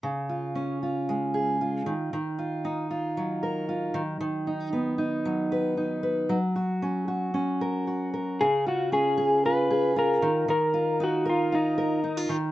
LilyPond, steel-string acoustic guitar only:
\new Staff \with { instrumentName = "Steel-string acoustic guitar" } { \time 4/4 \key cis \mixolydian \tempo 4 = 115 cis8 eis'8 cis'8 eis'8 gis8 gis'8 eis'8 dis8 | dis8 eis'8 dis'8 eis'8 fis8 ais'8 eis'8 dis8 | dis8 dis'8 b8 dis'8 fis8 b'8 dis'8 b'8 | fis8 fis'8 cis'8 fis'8 cis'8 ais'8 fis'8 ais'8 |
cis8 eis'8 cis'8 gis'8 eis'8 gis'8 eis'8 dis8 | dis8 eis'8 dis'8 ais'8 eis'8 ais'8 dis'16 eis'16 dis8 | }